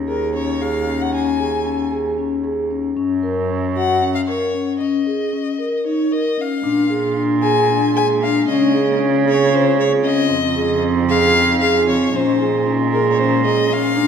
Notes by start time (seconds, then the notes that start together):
Already playing: D#2
0.08 G#4 A#4
0.34 C#4 C#5
0.60 G#4 F5
0.86 C#4
1.02 F#5
1.13 C#4 G#5
1.39 G#4
1.65 C#4
1.92 G#4
2.18 C#4
2.44 G#4
2.71 C#4
2.95 F#2 C#4
3.23 A#4
3.50 C#4
3.76 F#4 F#5
4.02 C#4
4.15 F5
4.28 A#4 C#5
4.55 C#4
4.80 C#4 D#5
5.07 G#4
5.33 C#4
5.59 A#4
5.85 D#4 C#5
6.11 A#4 D#5
6.38 C#4 F5
6.63 A#2 G#3 A#3 D4
6.90 G#4
7.17 D4
7.42 G#4 G#5
7.69 D4
7.95 G#4 G#5
8.21 D4 F5
8.46 C#3 C4 C#4 F4 D#5
8.74 G#4
8.99 C#4
9.25 G#4 C#5
9.51 C#4 C5
9.77 G#4 C#5
10.03 C#4 D#5
10.29 F2 F3 C4 D#4 G#4
10.56 G#4
10.83 C4
11.09 G#4 F5
11.35 C4
11.61 G#4 F5
11.87 C4 C#5
12.13 A#2 G#3 A#3 C#4 C5
12.39 G#4
12.66 C#4
12.93 G#4 A#4
13.12 C#5
13.18 C#4 C5
13.44 G#4 D#5
13.70 C#4 F5
13.96 A#2 G#3 D4